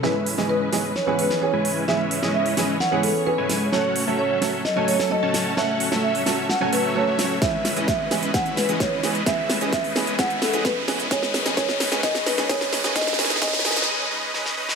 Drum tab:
HH |----o-------o-------o-------o---|----o-----o-o-------o-------o---|----o-------o-------o-------o---|----o-----o-o-------o-------o---|
SD |o-----o-----o---o-----o---------|o-----o-----o---o-----------o---|o-----------o---o-----o-----o---|o-----o-----o---o-----------o---|
BD |--------------------------------|--------------------------------|--------------------------------|--------------------------------|

HH |x---o-x-x---o-x-x-x-o-x-x---o-x-|x---o-x-x-o-o-x-x-x-o-x-x---o-x-|x---o-x-x---o-x-x-x-o-x-x---o-x-|x-x-o-x-x-o-o-x-----------------|
SD |o---o---o---o---o---o---o---o---|o---o---o---o---o---o---o---o---|o-o-o-o-o-o-o-o-o-o-o-o-o-o-o-o-|oooooooooooooooo--------o-o---o-|
BD |o-------o-------o-------o-------|o-------o-------o-------o-------|o-------o-------o-------o-------|o-------o-----------------------|